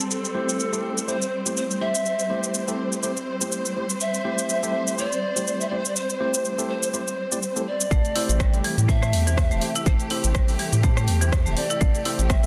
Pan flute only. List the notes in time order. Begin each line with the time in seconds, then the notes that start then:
0.11 A4
1.08 C5
1.57 C5
1.81 E5
4.01 E5
4.99 D5
5.61 E5
5.69 D5
5.78 C5
5.88 D5
5.97 C5
6.69 C5
7.67 D5
8.89 E5
9.87 C5
10.11 C5
11.51 E5
11.57 D5
12.23 G5
12.30 E5